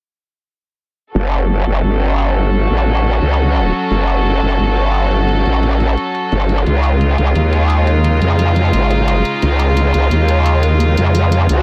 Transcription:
1.15 F#1 F#3 C#4 F#4 A4, closed hi-hat
1.32 closed hi-hat
1.49 closed hi-hat
1.67 F#1, closed hi-hat
1.84 G1, closed hi-hat
2.01 closed hi-hat
2.18 closed hi-hat
2.36 closed hi-hat
2.53 closed hi-hat
2.70 A1, closed hi-hat
2.87 closed hi-hat
3.04 closed hi-hat
3.22 C#2, closed hi-hat
3.39 closed hi-hat
3.56 closed hi-hat
3.73 closed hi-hat
3.91 F#1, closed hi-hat
4.08 closed hi-hat
4.25 closed hi-hat
4.42 F#1, closed hi-hat
4.60 G1, closed hi-hat
4.77 closed hi-hat
4.94 closed hi-hat
5.11 closed hi-hat
5.28 closed hi-hat
5.46 A1, closed hi-hat
5.63 closed hi-hat
5.80 closed hi-hat
5.98 closed hi-hat
6.15 closed hi-hat
6.32 G1, closed hi-hat
6.49 closed hi-hat
6.66 C#2 C#3 G#3 D#4 F4, closed hi-hat
6.84 closed hi-hat
7.01 closed hi-hat
7.18 C#2, closed hi-hat
7.35 D#2, closed hi-hat
7.53 closed hi-hat
7.70 closed hi-hat
7.87 closed hi-hat
8.04 closed hi-hat
8.22 F2, closed hi-hat
8.39 closed hi-hat
8.56 closed hi-hat
8.73 G#1, closed hi-hat
8.91 closed hi-hat
9.08 closed hi-hat
9.25 closed hi-hat
9.42 C#2, closed hi-hat
9.60 closed hi-hat
9.77 closed hi-hat
9.94 C#2, closed hi-hat
10.11 D#2, closed hi-hat
10.29 closed hi-hat
10.46 closed hi-hat
10.63 closed hi-hat
10.80 closed hi-hat
10.97 F2, closed hi-hat
11.15 closed hi-hat
11.32 closed hi-hat
11.49 C#2, closed hi-hat, swell

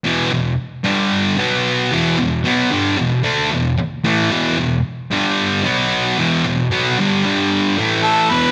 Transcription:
0.04 E2 B2 E3
0.31 E2 B2
0.84 G2 D3 G3
1.37 B2 F#3 B3
1.92 E2 B2 E3
2.18 E2 B2
2.44 B2 F#3 B3
2.70 G2 D3 G3
2.98 E2 B2
3.24 D3 A3 D4
3.51 E2 B2
3.78 muted distorted electric guitar stroke
4.04 A2 E3 A3
4.30 E2 B2 E3
4.57 E2 B2
5.11 G2 D3 G3
5.64 B2 F#3 B3
6.17 E2 B2 E3
6.45 E2 B2
6.71 B2 F#3 B3
6.98 G2 D3 G3
7.25 G2 D3 G3
7.77 A2 E3 A3
8.03 A4
8.30 E2 B2 E3 B4

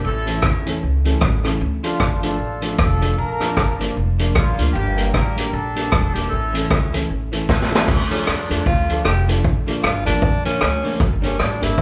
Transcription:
0.04 A1 C#4 E4 A4
0.26 E3 A3 C#4 E4 A4, closed hi-hat
0.42 E2, kick, cross-stick
0.65 E3 A3 C#4 E4 A4, closed hi-hat
0.82 C#2 E4 A4
1.05 E3 A3 C#4 E4 A4, closed hi-hat
1.21 A1, kick, cross-stick
1.44 E3 A3 C#4 E4 A4, cross-stick, closed hi-hat
1.61 D2
1.83 F3 A3 D4 F4 A4, closed hi-hat
2.00 G1, kick, cross-stick
2.22 F3 A3 D4 F4 A4, closed hi-hat
2.39 A1 F4 A4
2.61 F3 A3 D4 F4 A4, closed hi-hat
2.78 F1 D4 F4 A4, kick, cross-stick
3.00 F3 A3 D4 F4 A4, closed hi-hat
3.17 A#1 D4 F4 A#4
3.40 F3 A#3 D4 F4 A#4, cross-stick, closed hi-hat
3.57 G1, kick, cross-stick
3.79 F3 A#3 D4 F4 A#4, closed hi-hat
3.96 F1 F4 A#4
4.19 F3 A#3 D4 F4 A#4, closed hi-hat
4.34 A#1 A#3 D4 F4, kick, cross-stick
4.57 D2 F3 A#3 D4 F4 A#4, closed hi-hat
4.73 G1 A#3 D4 G4
4.97 G3 A#3 D4 G4 A#4, closed hi-hat
5.13 A1 D4 G4 A#4, kick, cross-stick
5.36 G3 A#3 D4 G4 A#4, closed hi-hat
5.52 A#1 D4 G4 A4 A#4
5.75 G3 A#3 D4 G4 A#4, closed hi-hat
5.92 E1, kick, cross-stick
6.13 G3 A#3 D4 G4 A#4, closed hi-hat
6.29 A1 C#4 E4 A4
6.53 E3 A3 C#4 E4 A4, closed hi-hat
6.70 C#2, kick, cross-stick
6.92 E3 A3 C#4 E4 A4, closed hi-hat
7.10 A1 E4 A4
7.32 E3 A3 C#4 E4 A4, closed hi-hat
7.49 A1, kick, snare
7.62 snare
7.71 E3 A3 C#4 E4 A4
7.75 snare
7.88 D2, kick, crash
8.10 F3 A3 C#4 D4 F4 A4, closed hi-hat
8.27 F2 D4, cross-stick
8.49 F2 F3 A3 D4 F4 A4, closed hi-hat
8.66 D2 F4, kick
8.88 F3 A3 D4 F4 A4, closed hi-hat
9.05 F1 G4, cross-stick
9.27 F3 A3 D4 F4 A4, closed hi-hat
9.44 A#1, kick
9.67 F3 A#3 D4 F4 A#4, closed hi-hat
9.83 G1 F4, cross-stick
10.05 A1 F3 A#3 D4 F4 A#4, closed hi-hat
10.22 A#1, kick
10.44 F3 A#3 C#4 D4 F4 A#4, closed hi-hat
10.61 D2, cross-stick
10.82 F3 A#3 D4 F4 A#4, open hi-hat
11.00 G1, kick, hi-hat pedal
11.21 G3 A#3 C#4 D4 G4 A#4, closed hi-hat
11.39 A1 D4, cross-stick
11.61 G1 G3 A#3 D4 E4 G4 A#4, closed hi-hat
11.78 A#1, kick

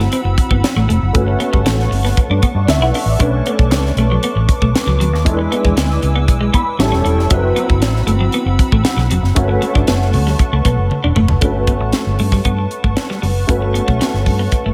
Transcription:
Already playing: F#3 C4 E4 B4 F#5 B5 E6
0.12 C4, closed hi-hat
0.24 F#1, muted clean electric guitar stroke
0.38 kick, closed hi-hat
0.50 G1 B3, kick
0.64 muted clean electric guitar stroke, snare, closed hi-hat
0.76 A1 A3
0.89 F1 A3, closed hi-hat
1.02 F#1
1.13 G1 A3 C#4 F#4 B4 A5 C#6, kick, closed hi-hat
1.28 muted clean electric guitar stroke
1.40 B3, closed hi-hat
1.53 G1 G3, kick
1.66 A1 A3, snare, closed hi-hat
1.80 snare
1.91 G1, muted clean electric guitar stroke, open hi-hat
2.05 B3, snare
2.17 muted clean electric guitar stroke, kick, closed hi-hat
2.30 G2 D4
2.42 B3, kick, closed hi-hat
2.54 G2 D5
2.67 D2 E5, muted clean electric guitar stroke, snare, closed hi-hat
2.80 B1 E4 F#5, snare
2.94 D4 E5, open hi-hat
3.06 A1 D5
3.19 B1 A3 C#4 D4 B4 D6, kick, closed hi-hat
3.46 B3, closed hi-hat
3.59 B1, muted clean electric guitar stroke, kick
3.71 C#2, muted clean electric guitar stroke, snare, closed hi-hat
3.85 snare
3.96 B1 A3, closed hi-hat
4.12 F#3
4.23 B3, closed hi-hat
4.35 A1, muted clean electric guitar stroke
4.49 kick, closed hi-hat
4.61 B1 A3, kick
4.75 muted clean electric guitar stroke, snare, closed hi-hat
4.86 C#2 F#3
5.00 D2 F#3, closed hi-hat
5.13 D#2, snare
5.25 E2 G#3 D4 E4 A4 G#5 E6, kick, closed hi-hat
5.33 B4
5.39 muted clean electric guitar stroke
5.52 B3, closed hi-hat
5.64 E2 G#3, kick
5.76 D2 B3, snare, closed hi-hat
5.90 snare
6.02 C#2, muted clean electric guitar stroke, closed hi-hat
6.16 B3
6.28 B1, muted clean electric guitar stroke, kick, closed hi-hat
6.41 G#3
6.54 B3 B5, kick, closed hi-hat
6.79 A1 G3 C#4 E4 A4 G5 A5 C#6, muted clean electric guitar stroke, snare, closed hi-hat
6.91 E1 C#4, snare
7.05 E1 C#4, closed hi-hat
7.18 F1, snare
7.30 F#1 F#3 C4 D4 E4 B4 F#5 B5 E6, kick, closed hi-hat
7.56 B3, closed hi-hat
7.69 F#1, muted clean electric guitar stroke, kick
7.81 A1, muted clean electric guitar stroke, snare, closed hi-hat
7.96 snare
8.06 G1 A3, closed hi-hat
8.21 F#3
8.32 B3, closed hi-hat
8.45 F#1, muted clean electric guitar stroke
8.59 kick, closed hi-hat
8.72 A1 A3, kick
8.85 muted clean electric guitar stroke, snare, closed hi-hat
8.97 B1 F#3, snare
9.10 F1 F#3, closed hi-hat
9.22 F#1, snare
9.35 A3 C#4 F#4 A#4 B4 A5 C#6, kick, closed hi-hat
9.43 B4
9.49 muted clean electric guitar stroke
9.62 A3, closed hi-hat
9.75 G1 D4, kick
9.87 F#1 B3, snare, closed hi-hat
10.02 snare
10.13 D2, muted clean electric guitar stroke, open hi-hat
10.27 G3, snare
10.39 muted clean electric guitar stroke, kick, closed hi-hat
10.52 C#2 A3
10.65 B1 B3, kick, closed hi-hat
10.78 F#1
10.91 muted clean electric guitar stroke, high tom
11.04 E1 D4
11.16 F1 A3, mid tom
11.28 F#1, floor tom
11.41 G1 A3 C#4 D4 F#4 B4 F#5 A5 C#6, kick, closed hi-hat
11.67 B3, kick, closed hi-hat
11.80 A1, muted clean electric guitar stroke
11.93 muted clean electric guitar stroke, snare, closed hi-hat
12.06 G1
12.19 G2 A3, open hi-hat
12.32 G3, kick, snare
12.45 G2 B3, kick, closed hi-hat
12.58 muted clean electric guitar stroke
12.71 closed hi-hat
12.84 G1 A3, kick
12.97 muted clean electric guitar stroke, snare, closed hi-hat
13.10 G3, snare
13.22 F#1 G3, open hi-hat
13.47 G1 A3 C#4 F#4 B4, kick, closed hi-hat
13.62 muted clean electric guitar stroke
13.74 B3, closed hi-hat
13.88 B1 A3, kick
14.01 B3, snare, closed hi-hat
14.14 G1, snare
14.26 G2, muted clean electric guitar stroke, kick, open hi-hat
14.39 B3
14.52 muted clean electric guitar stroke, kick, closed hi-hat
14.66 G1 A3

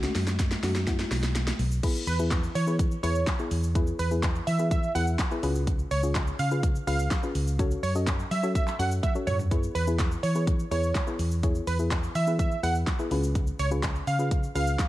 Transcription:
0.03 A3 C#4 F#4, snare, shaker
0.15 F#2, snare, open hi-hat, shaker
0.27 snare, shaker
0.39 kick, snare, closed hi-hat, shaker
0.51 snare, shaker
0.63 F#2 A3 C#4 F#4, snare, open hi-hat, shaker
0.75 snare, shaker
0.87 B3 E4 F#4, kick, snare, closed hi-hat, shaker
0.99 snare, shaker
1.11 B1, snare, open hi-hat, shaker
1.23 snare, shaker
1.35 snare, closed hi-hat, shaker
1.47 snare, shaker
1.59 B1, open hi-hat, shaker
1.72 shaker
1.83 B3 E4 G#4 B4, kick, closed hi-hat, crash, shaker
1.95 shaker
2.07 E2 B4, open hi-hat, shaker
2.19 B3 E4 G#4 B4, shaker
2.31 kick, snare, clap, closed hi-hat, shaker
2.43 shaker
2.55 E3 C#5, open hi-hat, shaker
2.67 B3 E4 G#4 B4, shaker
2.79 kick, closed hi-hat, shaker
2.91 shaker
3.03 E2 B3 E4 G#4 B4 C#5, open hi-hat, shaker
3.15 shaker
3.27 kick, snare, clap, closed hi-hat, shaker
3.39 B3 E4 G#4 C#5, shaker
3.51 E2, open hi-hat, shaker
3.63 shaker
3.75 B3 E4 G#4 B4, kick, closed hi-hat, shaker
3.87 shaker
3.99 E2 B4, open hi-hat, shaker
4.11 B3 E4 G#4 B4, shaker
4.23 kick, snare, clap, closed hi-hat, shaker
4.35 shaker
4.47 E3 E5, open hi-hat, shaker
4.59 B3 E4 G#4 B4, shaker
4.71 E5, kick, closed hi-hat, shaker
4.83 shaker
4.95 E2 B3 E4 G#4 B4 F#5, open hi-hat, shaker
5.07 shaker
5.19 kick, snare, clap, closed hi-hat, shaker
5.31 B3 E4 G#4 B4, shaker
5.43 C#2 C#4 F4 G#4 B4, open hi-hat, shaker
5.55 shaker
5.67 kick, closed hi-hat, shaker
5.79 shaker
5.91 C#2 C#5, open hi-hat, shaker
6.03 C#4 F4 G#4 C#5, shaker
6.15 kick, snare, clap, closed hi-hat, shaker
6.27 shaker
6.39 C#3 F5, open hi-hat, shaker
6.51 C#4 F4 G#4 B4, shaker
6.63 kick, closed hi-hat, shaker
6.75 shaker
6.87 C#2 C#4 F4 G#4 B4 F5, open hi-hat, shaker
6.99 shaker
7.11 kick, snare, clap, closed hi-hat, shaker
7.23 C#4 F4 G#4 B4, shaker
7.35 C#2, open hi-hat, shaker
7.47 shaker
7.59 C#4 F#4 A4 C#5, kick, closed hi-hat, shaker
7.71 shaker
7.83 F#2 C#5, open hi-hat, shaker
7.95 C#4 F#4 A4 D#5, shaker
8.07 kick, snare, clap, closed hi-hat, shaker
8.19 shaker
8.31 F#3 E5, open hi-hat, shaker
8.43 C#4 F#4 A4 C#5, shaker
8.55 E5, kick, closed hi-hat, shaker
8.67 clap, shaker
8.79 F#2 C#4 F#4 A4 C#5 F#5, open hi-hat, shaker
8.91 shaker
9.03 E5, kick, closed hi-hat, high tom, shaker
9.15 C#4 F#4 A4 C#5, shaker
9.27 F#2 C#5, mid tom, open hi-hat, shaker
9.39 floor tom, shaker
9.51 B3 E4 G#4 B4, kick, closed hi-hat, shaker
9.63 shaker
9.75 E2 B4, open hi-hat, shaker
9.87 B3 E4 G#4 B4, shaker
9.99 kick, snare, clap, closed hi-hat, shaker
10.11 shaker
10.23 E3 C#5, open hi-hat, shaker
10.35 B3 E4 G#4 B4, shaker
10.47 kick, closed hi-hat, shaker
10.59 shaker
10.71 E2 B3 E4 G#4 B4 C#5, open hi-hat, shaker
10.83 shaker
10.95 kick, snare, clap, closed hi-hat, shaker
11.07 B3 E4 G#4 B4, shaker
11.19 E2, open hi-hat, shaker
11.31 shaker
11.43 B3 E4 G#4 C#5, kick, closed hi-hat, shaker
11.55 shaker
11.67 E2 B4, open hi-hat, shaker
11.79 B3 E4 G#4 B4, shaker
11.91 kick, snare, clap, closed hi-hat, shaker
12.03 shaker
12.15 E3 E5, open hi-hat, shaker
12.27 B3 E4 G#4 B4, shaker
12.39 E5, kick, closed hi-hat, shaker
12.51 shaker
12.63 E2 B3 E4 G#4 B4 F#5, open hi-hat, shaker
12.75 shaker
12.87 kick, snare, clap, closed hi-hat, shaker
12.99 B3 E4 G#4 B4, shaker
13.11 C#2 C#4 F4 G#4 B4, open hi-hat, shaker
13.23 shaker
13.35 kick, closed hi-hat, shaker
13.47 shaker
13.59 C#2 C#5, open hi-hat, shaker
13.71 C#4 F4 G#4 B4, shaker
13.83 kick, snare, clap, closed hi-hat, shaker
13.95 shaker
14.07 C#3 F5, open hi-hat, shaker
14.19 C#4 F4 G#4 B4, shaker
14.31 kick, closed hi-hat, shaker
14.43 shaker
14.55 C#2 C#4 F4 G#4 B4 F5, open hi-hat, shaker
14.67 shaker
14.79 kick, snare, clap, closed hi-hat, shaker

